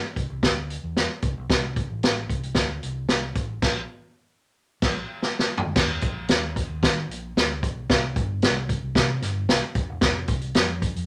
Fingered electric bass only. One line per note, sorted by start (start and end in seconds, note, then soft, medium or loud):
0.16 0.27 C2 medium
0.30 0.41 C2 medium
0.43 0.76 D2 loud
0.84 1.06 E2 medium
1.23 1.34 C2 medium
1.37 1.48 B1 medium
1.50 1.83 C2 medium
1.90 2.24 A1 medium
2.30 2.52 C2 medium
2.55 2.78 D2 medium
2.83 3.05 C2 medium
3.10 3.32 C2 medium
3.36 3.58 A1 medium
3.63 3.81 A#1 medium
4.82 5.01 A#1 loud
5.76 5.98 D#2 medium
6.03 6.25 A#1 medium
6.29 6.63 D#2 medium
6.69 6.80 D#2 medium
6.83 7.05 D#3 loud
7.09 7.31 A#1 medium
7.36 7.63 D2 medium
7.63 7.85 B1 loud
7.90 8.12 C2 loud
8.16 8.44 G1 medium
8.42 8.76 C2 medium
8.82 8.94 C2 medium
8.95 9.18 C3 loud
9.22 9.44 G1 loud
9.48 9.60 C2 medium
9.75 9.86 D#1 loud
9.89 10.00 E1 medium
10.02 10.25 F1 loud
10.29 10.51 C2 loud
10.55 10.89 F2 medium
10.96 11.06 F2 medium